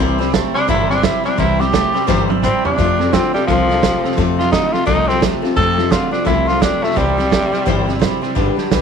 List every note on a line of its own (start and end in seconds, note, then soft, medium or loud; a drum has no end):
0.00 0.39 C2 medium
0.00 0.18 C3 medium
0.00 0.20 C3 medium
0.00 0.20 E3 loud
0.00 0.18 G3 medium
0.00 0.20 G3 medium
0.00 0.19 C4 medium
0.00 0.18 E4 medium
0.00 0.17 C5 loud
0.18 0.32 C3 medium
0.18 0.32 G3 medium
0.18 0.31 G3 medium
0.18 0.32 C4 medium
0.18 0.33 E4 medium
0.18 0.33 C5 medium
0.18 snare soft
0.32 0.53 C3 medium
0.32 0.54 G3 medium
0.32 0.53 A3 loud
0.32 0.55 C4 medium
0.32 0.55 E4 medium
0.32 0.53 C5 medium
0.32 kick medium
0.32 snare loud
0.32 hi-hat pedal medium
0.54 0.66 C3 medium
0.54 0.67 G3 medium
0.54 0.67 G3 soft
0.54 0.68 C4 soft
0.54 0.68 D4 loud
0.54 0.68 E4 soft
0.54 0.68 C5 medium
0.54 muted upright bass stroke medium
0.54 snare soft
0.67 1.08 G1 medium
0.67 0.87 C3 medium
0.67 0.90 C3 medium
0.67 0.90 E3 medium
0.67 0.88 G3 medium
0.67 0.90 G3 loud
0.67 0.90 C4 medium
0.67 0.89 E4 medium
0.67 0.90 E4 loud
0.67 0.88 C5 loud
0.67 kick loud
0.67 snare soft
0.89 1.02 C3 medium
0.89 1.02 G3 medium
0.89 1.01 G3 soft
0.89 1.02 C4 soft
0.89 1.05 D4 loud
0.89 1.03 E4 soft
0.89 1.03 C5 medium
0.89 snare soft
1.03 1.23 C3 medium
1.03 1.25 G3 medium
1.03 1.23 G3 medium
1.03 1.25 C4 medium
1.03 1.25 E4 medium
1.03 1.24 E4 medium
1.03 1.22 C5 medium
1.03 kick loud
1.03 snare loud
1.03 hi-hat pedal medium
1.24 1.36 C3 medium
1.24 1.37 G3 medium
1.24 1.37 G3 soft
1.24 1.38 C4 soft
1.24 1.38 D4 medium
1.24 1.38 E4 soft
1.24 1.38 C5 medium
1.24 muted upright bass stroke medium
1.24 snare soft
1.37 1.78 C2 medium
1.37 1.60 C3 medium
1.37 1.57 C3 medium
1.37 1.60 E3 medium
1.37 1.58 G3 medium
1.37 1.60 G3 medium
1.37 1.59 C4 medium
1.37 1.58 E4 medium
1.37 1.62 E4 medium
1.37 1.57 C5 medium
1.37 kick loud
1.37 snare soft
1.58 1.71 C3 medium
1.58 1.72 G3 medium
1.58 1.71 G3 soft
1.58 1.72 C4 medium
1.58 1.73 E4 medium
1.58 2.28 G4 medium
1.58 1.73 C5 medium
1.58 snare soft
1.72 1.92 C3 medium
1.72 1.94 G3 medium
1.72 1.93 A3 loud
1.72 1.94 C4 medium
1.72 1.93 E4 medium
1.72 1.92 C5 medium
1.72 kick medium
1.72 snare loud
1.72 hi-hat pedal medium
1.93 2.06 C3 medium
1.93 2.06 G3 medium
1.93 2.07 G3 soft
1.93 2.07 C4 soft
1.93 2.07 E4 soft
1.93 2.07 C5 medium
1.93 muted upright bass stroke medium
1.93 snare soft
2.07 2.48 G1 medium
2.07 2.29 C3 medium
2.07 2.27 C3 medium
2.07 2.29 E3 medium
2.07 2.27 G3 loud
2.07 2.30 G3 loud
2.07 2.30 C4 loud
2.07 2.29 E4 loud
2.07 2.27 C5 loud
2.07 kick loud
2.07 snare medium
2.29 2.41 C3 medium
2.29 2.42 G3 medium
2.29 2.41 G3 soft
2.29 2.42 C4 medium
2.29 2.43 E4 medium
2.29 2.43 C5 medium
2.29 high tom medium
2.42 2.62 C3 medium
2.42 2.64 G3 medium
2.42 2.62 G3 loud
2.42 2.65 C4 medium
2.42 2.64 C4 medium
2.42 2.64 E4 medium
2.42 2.63 C5 medium
2.42 kick loud
2.42 hi-hat pedal medium
2.42 mid tom medium
2.64 2.77 C3 medium
2.64 2.77 G3 medium
2.64 2.78 G3 soft
2.64 2.78 C4 soft
2.64 3.14 D4 medium
2.64 2.78 E4 soft
2.64 2.78 C5 medium
2.64 muted upright bass stroke medium
2.64 floor tom medium
2.77 2.97 F2 medium
2.77 3.18 F2 medium
2.77 2.97 C3 medium
2.77 2.99 F3 medium
2.77 3.00 A3 medium
2.77 3.00 C4 medium
2.77 3.00 F4 medium
2.77 2.98 A4 medium
2.77 kick loud
2.77 snare soft
2.99 3.11 F2 medium
2.99 3.12 C3 medium
2.99 3.13 C4 medium
2.99 3.14 F4 medium
2.99 3.13 A4 medium
2.99 snare soft
3.12 3.32 F2 medium
3.12 3.32 D3 medium
3.12 3.34 A3 medium
3.12 3.34 C4 medium
3.12 3.35 C4 medium
3.12 3.34 F4 medium
3.12 3.32 A4 medium
3.12 kick medium
3.12 snare loud
3.12 hi-hat pedal medium
3.34 3.46 F2 medium
3.34 3.47 C3 medium
3.34 3.47 G3 medium
3.34 3.48 C4 soft
3.34 3.48 F4 soft
3.34 3.47 A4 medium
3.34 muted upright bass stroke medium
3.34 snare soft
3.47 3.87 C2 loud
3.47 3.67 F2 medium
3.47 3.67 C3 loud
3.47 4.15 F3 loud
3.47 3.69 F3 medium
3.47 3.70 A3 medium
3.47 3.70 C4 medium
3.47 3.69 F4 medium
3.47 3.68 A4 medium
3.47 kick loud
3.47 snare soft
3.69 3.81 F2 medium
3.69 3.81 C3 medium
3.69 3.82 C4 soft
3.69 3.83 F4 soft
3.69 3.82 A4 medium
3.69 snare soft
3.82 4.02 F2 medium
3.82 4.02 C3 medium
3.82 4.04 A3 medium
3.82 4.04 C4 medium
3.82 4.04 F4 medium
3.82 4.02 A4 medium
3.82 kick medium
3.82 snare loud
3.82 hi-hat pedal medium
4.03 4.16 F2 medium
4.03 4.16 C3 medium
4.03 4.17 C4 medium
4.03 4.17 F4 medium
4.03 4.17 A4 medium
4.03 muted upright bass stroke medium
4.03 snare soft
4.11 snare soft
4.17 4.37 F2 medium
4.17 4.57 F2 medium
4.17 4.37 C3 medium
4.17 4.39 F3 medium
4.17 4.39 A3 medium
4.17 4.39 C4 loud
4.17 4.39 F4 medium
4.17 4.37 A4 loud
4.17 kick loud
4.17 snare soft
4.38 4.50 F2 medium
4.38 4.51 C3 medium
4.38 4.51 C4 medium
4.38 4.52 F4 medium
4.38 4.52 A4 medium
4.38 snare soft
4.51 4.71 F2 medium
4.51 4.71 D3 loud
4.51 4.73 A3 medium
4.51 4.74 C4 medium
4.51 4.75 D#4 medium
4.51 4.73 F4 medium
4.51 4.71 A4 medium
4.51 kick medium
4.51 snare loud
4.51 hi-hat pedal medium
4.72 4.84 F2 medium
4.72 4.85 C3 medium
4.72 4.86 C4 soft
4.72 4.86 F4 medium
4.72 4.87 A4 soft
4.72 muted upright bass stroke medium
4.72 snare soft
4.86 5.27 C2 loud
4.86 5.06 F2 medium
4.86 5.06 C3 medium
4.86 5.08 F3 medium
4.86 5.08 A3 medium
4.86 5.09 C4 medium
4.86 5.09 D#4 loud
4.86 5.08 F4 medium
4.86 5.06 A4 medium
4.86 kick loud
4.86 snare soft
5.07 5.20 F2 medium
5.07 5.20 C3 loud
5.07 5.21 C4 loud
5.07 5.21 C4 soft
5.07 5.22 F4 soft
5.07 5.21 A4 medium
5.07 snare soft
5.21 5.41 F2 medium
5.21 5.41 C3 loud
5.21 5.43 A3 medium
5.21 5.43 C4 medium
5.21 5.43 F4 medium
5.21 5.41 A4 medium
5.21 kick loud
5.21 snare loud
5.21 hi-hat pedal medium
5.42 5.54 F2 medium
5.42 5.55 C3 medium
5.42 5.56 C4 medium
5.42 5.57 F4 medium
5.42 5.56 A4 medium
5.42 muted upright bass stroke medium
5.42 snare soft
5.56 5.76 F2 medium
5.56 5.96 F2 medium
5.56 5.76 C3 medium
5.56 5.78 F3 medium
5.56 5.78 A3 medium
5.56 5.79 C4 medium
5.56 5.77 F4 medium
5.56 5.93 A4 loud
5.56 5.75 A4 medium
5.56 kick loud
5.56 snare soft
5.77 5.89 F2 medium
5.77 5.90 C3 medium
5.77 5.90 C4 soft
5.77 5.91 F4 soft
5.77 5.91 A4 medium
5.77 snare soft
5.90 6.11 F2 medium
5.90 6.11 D3 medium
5.90 6.13 A3 medium
5.90 6.13 C4 medium
5.90 6.11 F4 medium
5.90 6.12 F4 medium
5.90 6.10 A4 medium
5.90 kick medium
5.90 snare loud
5.90 hi-hat pedal loud
6.11 6.25 F2 medium
6.11 6.25 C3 medium
6.11 6.25 C4 soft
6.11 6.26 D4 medium
6.11 6.26 F4 soft
6.11 6.26 A4 medium
6.11 muted upright bass stroke medium
6.11 snare soft
6.25 6.66 C2 medium
6.25 6.46 F2 medium
6.25 6.46 C3 medium
6.25 6.47 F3 medium
6.25 6.48 A3 medium
6.25 6.48 C4 medium
6.25 6.49 E4 medium
6.25 6.47 F4 medium
6.25 6.45 A4 medium
6.25 kick loud
6.25 snare soft
6.46 6.60 F2 medium
6.46 6.60 C3 medium
6.46 6.60 C4 soft
6.46 6.63 F4 medium
6.46 6.62 F4 soft
6.46 6.61 A4 medium
6.46 snare soft
6.60 6.81 F2 medium
6.60 6.81 C3 medium
6.60 6.82 A3 medium
6.60 6.83 C4 medium
6.60 6.85 D4 medium
6.60 6.83 F4 medium
6.60 6.81 A4 medium
6.60 kick medium
6.60 snare loud
6.60 hi-hat pedal medium
6.82 6.95 F2 medium
6.82 6.94 C3 medium
6.82 6.99 A3 loud
6.82 6.96 C4 soft
6.82 6.97 F4 soft
6.82 6.96 A4 medium
6.82 muted upright bass stroke medium
6.82 snare soft
6.90 snare soft
6.95 7.36 C2 medium
6.95 7.17 C3 medium
6.95 7.15 C3 medium
6.95 7.18 E3 medium
6.95 7.16 G3 loud
6.95 7.18 G3 medium
6.95 7.99 G3 loud
6.95 7.18 C4 medium
6.95 7.17 E4 medium
6.95 7.16 C5 medium
6.95 kick loud
6.95 snare soft
7.17 7.30 C3 medium
7.17 7.30 G3 medium
7.17 7.29 G3 medium
7.17 7.30 C4 soft
7.17 7.31 E4 medium
7.17 7.31 C5 medium
7.17 snare soft
7.30 7.51 C3 medium
7.30 7.52 G3 medium
7.30 7.51 A3 medium
7.30 7.53 C4 medium
7.30 7.52 E4 medium
7.30 7.51 C5 medium
7.30 kick medium
7.30 snare loud
7.30 hi-hat pedal medium
7.52 7.65 C3 medium
7.52 7.65 G3 medium
7.52 7.66 G3 soft
7.52 7.66 C4 soft
7.52 7.66 E4 medium
7.52 7.66 C5 medium
7.52 muted upright bass stroke medium
7.52 snare soft
7.65 8.06 G1 medium
7.65 7.87 C3 medium
7.65 7.86 C3 medium
7.65 7.88 E3 loud
7.65 7.86 G3 medium
7.65 7.88 G3 medium
7.65 7.87 C4 medium
7.65 7.87 E4 loud
7.65 7.86 C5 loud
7.65 kick loud
7.65 snare soft
7.87 8.00 C3 medium
7.87 8.00 G3 medium
7.87 7.98 G3 soft
7.87 8.00 C4 soft
7.87 8.01 E4 medium
7.87 8.01 C5 medium
7.87 snare soft
7.99 8.21 C3 medium
7.99 8.22 G3 medium
7.99 8.21 G3 medium
7.99 8.23 C4 medium
7.99 8.21 E4 medium
7.99 8.20 C5 medium
7.99 kick medium
7.99 snare loud
7.99 hi-hat pedal medium
8.22 8.35 C3 medium
8.22 8.35 G3 medium
8.22 8.34 G3 soft
8.22 8.35 C4 soft
8.22 8.36 E4 medium
8.22 8.36 C5 medium
8.22 muted upright bass stroke medium
8.22 snare soft
8.35 8.52 G1 medium
8.35 8.56 G2 medium
8.35 8.56 D3 medium
8.35 8.57 G3 medium
8.35 8.58 D4 medium
8.35 8.58 G4 medium
8.35 8.55 B4 medium
8.35 kick loud
8.35 snare soft
8.57 8.70 G2 medium
8.57 8.70 D3 medium
8.57 8.70 D4 medium
8.57 8.71 G4 medium
8.57 8.71 B4 medium
8.57 muted upright bass stroke medium
8.57 snare soft
8.71 8.81 B1 medium
8.71 8.81 G2 medium
8.71 8.81 E3 loud
8.71 8.81 G3 medium
8.71 8.81 D4 medium
8.71 8.81 G4 medium
8.71 8.81 B4 medium
8.71 kick medium
8.71 snare loud
8.71 hi-hat pedal medium